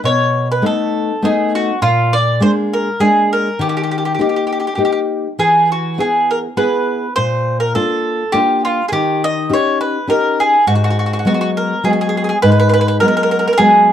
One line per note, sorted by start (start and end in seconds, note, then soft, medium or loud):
0.04 0.62 B2 soft
0.04 0.47 C#5 medium
0.52 0.64 B4 medium
0.62 1.10 A3 soft
0.62 1.10 B3 soft
0.62 1.11 D#4 soft
0.66 1.26 A4 medium
1.22 1.70 A3 soft
1.22 1.70 B3 soft
1.22 1.71 D#4 soft
1.22 1.53 G#4 medium
1.55 1.82 F#4 medium
1.82 2.40 A#2 medium
1.82 2.15 F4 medium
2.13 2.39 D5 medium
2.40 2.88 G#3 soft
2.40 2.89 A#3 soft
2.40 2.89 D4 soft
2.40 2.51 C5 medium
2.73 2.99 A#4 medium
3.00 3.48 G#3 soft
3.00 3.48 A#3 soft
3.00 3.48 D4 soft
3.00 3.30 G#4 medium
3.33 3.61 A#4 medium
3.59 4.17 D#3 medium
3.59 3.68 G4 medium
3.69 3.76 G4 soft
3.77 3.82 G4 soft
3.83 3.90 G4 soft
3.91 3.97 G4 soft
3.98 4.04 G4 soft
4.05 4.12 G4 soft
4.15 4.20 G4 soft
4.19 4.67 A#3 soft
4.19 4.67 D#4 soft
4.19 4.67 G4 soft
4.19 4.28 G4 soft
4.29 4.35 G4 soft
4.36 4.44 G4 soft
4.47 4.51 G4 soft
4.53 4.59 G4 soft
4.60 4.66 G4 soft
4.67 4.74 G4 soft
4.75 5.26 A#3 soft
4.75 5.26 D#4 soft
4.75 4.82 G4 soft
4.75 5.27 G4 soft
4.85 4.91 G4 soft
4.92 4.99 G4 soft
5.39 5.97 E3 soft
5.39 5.69 G#4 medium
5.72 6.00 F#4 medium
5.98 6.46 B3 soft
5.98 6.46 E4 soft
5.98 6.46 G#4 soft
5.98 6.29 G#4 medium
6.31 6.38 A#4 medium
6.57 7.05 B3 soft
6.57 7.05 E4 soft
6.57 7.06 G#4 soft
6.57 7.13 B4 medium
7.16 7.75 A#2 medium
7.16 7.59 C5 medium
7.60 7.75 A#4 medium
7.75 8.22 A#3 soft
7.75 8.23 D4 soft
7.75 8.23 F4 soft
7.75 8.36 A4 medium
8.32 8.81 A#3 soft
8.32 8.81 D4 soft
8.32 8.82 F4 soft
8.32 8.62 G4 medium
8.65 8.85 F4 medium
8.88 9.49 D#3 medium
8.88 8.92 G#4 medium
8.93 9.22 G4 medium
9.24 9.50 D#5 medium
9.49 9.97 C#4 soft
9.49 9.97 D#4 soft
9.49 9.97 G4 soft
9.53 9.80 C#5 medium
9.81 10.07 B4 medium
10.07 10.55 C#4 soft
10.07 10.55 D#4 soft
10.07 10.56 G4 soft
10.07 10.38 A#4 medium
10.40 10.66 G#4 medium
10.67 11.24 G#2 medium
10.67 10.74 F#4 medium
10.75 10.83 F#4 medium
10.84 10.89 F#4 medium
10.90 10.98 F#4 soft
10.99 11.05 F#4 soft
11.06 11.12 F#4 soft
11.13 11.18 F#4 medium
11.19 11.26 F#4 soft
11.25 11.73 F#3 soft
11.25 11.73 G#3 soft
11.25 11.74 B3 soft
11.25 11.33 F#4 medium
11.34 11.40 F#4 soft
11.41 11.50 F#4 medium
11.57 11.83 A#4 medium
11.84 12.32 F#3 soft
11.84 12.32 G#3 soft
11.84 12.33 B3 soft
11.84 11.92 G#4 medium
11.93 12.00 G#4 soft
12.01 12.08 G#4 soft
12.09 12.16 G#4 soft
12.17 12.23 G#4 soft
12.24 12.28 G#4 soft
12.29 12.37 G#4 soft
12.42 13.00 G#2 medium
12.42 12.50 B4 medium
12.52 12.58 B4 soft
12.60 12.67 B4 medium
12.69 12.72 B4 medium
12.74 12.80 B4 medium
12.81 12.87 B4 medium
12.88 12.96 B4 medium
13.00 13.48 F#3 soft
13.00 13.48 G#3 soft
13.00 13.48 B3 soft
13.00 13.07 A#4 medium
13.08 13.16 A#4 medium
13.17 13.22 A#4 medium
13.23 13.30 A#4 medium
13.31 13.38 A#4 medium
13.39 13.47 A#4 soft
13.48 13.52 A#4 medium
13.53 13.60 A#4 soft
13.58 13.93 F#3 soft
13.58 13.93 G#3 soft
13.58 13.93 B3 medium
13.58 13.93 G#4 medium